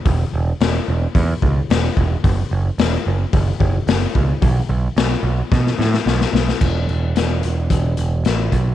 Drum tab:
CC |----------------|----------------|----------------|x---------------|
HH |o---o---o---o---|o---o---o---o---|o---o-----------|--x-x-x-x-x-x-x-|
SD |----o-------o---|----o-------o---|----o---oooooooo|----o-------o---|
BD |o-------o-o---o-|o-------o-o---o-|o-------o-------|o-------o-----o-|